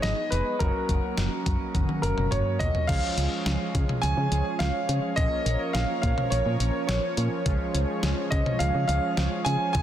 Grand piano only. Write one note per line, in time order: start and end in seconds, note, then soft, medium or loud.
0.02 0.32 D#5 medium
0.30 0.61 B4 medium
0.59 2.01 A#4 medium
2.02 2.29 A#4 medium
2.31 2.61 C#5 medium
2.59 2.89 D#5 medium
2.87 4.06 F5 loud
4.02 4.56 G#5 loud
4.59 5.19 F5 loud
5.16 5.76 D#5 loud
5.73 6.00 F5 medium
6.02 6.32 F5 medium
6.30 6.86 C#5 medium
6.87 7.28 C#5 medium
8.30 8.61 D#5 medium
8.59 8.86 F5 loud
8.88 9.47 F5 loud
9.45 9.71 G#5 loud
9.73 9.82 G#5 loud